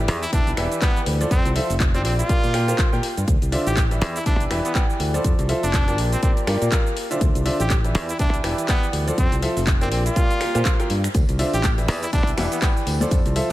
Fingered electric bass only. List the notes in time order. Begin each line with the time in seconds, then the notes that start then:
0.08 E2
0.33 E1
0.47 B1
0.57 E1
1.06 D2
1.31 F2
1.45 C2
1.70 F1
2.05 A#1
2.44 A#2
2.93 A#2
3.17 G2
3.28 D2
3.42 C2
3.67 A1
4.01 E2
4.26 E1
4.40 B1
4.51 E1
5.00 D2
5.24 F2
5.39 C2
5.63 F1
5.98 A#1
6.47 G2
6.62 A#2
7.21 D2
7.35 C2
7.60 A1
7.95 E2
8.20 E1
8.34 B1
8.44 E1
8.93 D2
9.18 F2
9.32 C2
9.57 F1
9.92 A#1
10.55 A#2
10.90 G2
11.15 D2
11.29 C2
11.53 A1
11.88 E2
12.13 E1
12.27 B1
12.37 E1
12.87 D2
13.11 F2
13.26 C2